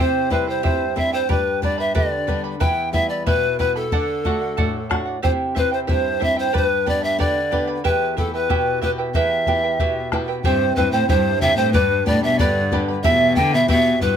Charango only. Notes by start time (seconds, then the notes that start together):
0.00 E4 G4 C5 E5 G5
0.31 E4 C5 E5 G5
0.47 E4 C5 G5
0.63 E4 G4 C5 E5 G5
0.96 E4 C5 E5 G5
1.13 E4 C5 G5
1.29 G4 B4 D5 G5 B5
1.63 B4 D5 G5 B5
1.78 B4 D5 B5
1.95 G4 B4 D5 G5 B5
2.27 B4 D5 G5 B5
2.44 B4 D5 B5
2.60 E4 B4 E5 G5 B5
2.93 E4 E5 G5 B5
3.10 E4 E5 B5
3.26 E4 B4 E5 G5 B5
3.59 E4 E5 G5 B5
3.76 E4 E5 B5
3.92 A4 D5 F#5
4.25 A4 D5 F#5
4.42 D5 F#5
4.57 A4 D5 F#5
4.90 A4 D5 F#5
5.05 D5 F#5
5.22 E4 G4 C5 E5 G5
5.55 E4 C5 E5 G5
5.71 E4 C5 G5
5.87 E4 G4 C5 E5 G5
6.20 E4 C5 E5 G5
6.36 E4 C5 G5
6.53 G4 B4 D5 G5 B5
6.86 B4 D5 G5 B5
7.02 B4 D5 B5
7.19 G4 B4 D5 G5 B5
7.51 B4 D5 G5 B5
7.67 B4 D5 B5
7.84 E4 G4 B4 E5 G5
8.17 E4 B4 E5 G5
8.34 E4 B4 G5
8.49 E4 G4 B4 E5 G5
8.82 E4 B4 E5 G5
8.98 E4 B4 G5
9.15 E4 G4 B4 E5 G5
9.47 E4 B4 E5 G5
9.63 E4 B4 G5
9.80 E4 G4 B4 E5 G5
10.12 E4 B4 E5 G5
10.28 E4 B4 G5
10.45 E4 G4 C5 E5 G5
10.77 E4 C5 E5 G5
10.93 E4 C5 G5
11.09 E4 G4 C5 E5 G5
11.42 E4 C5 E5 G5
11.58 E4 C5 G5
11.74 G4 B4 D5 G5 B5
12.07 B4 D5 G5 B5
12.23 B4 D5 B5
12.40 G4 B4 D5 G5 B5
12.73 B4 D5 G5 B5
12.88 B4 D5 B5
13.04 E4 G4 E5 G5 B5
13.37 E4 E5 G5 B5
13.53 E4 E5 B5
13.69 E4 G4 E5 G5 B5
14.02 E4 E5 G5 B5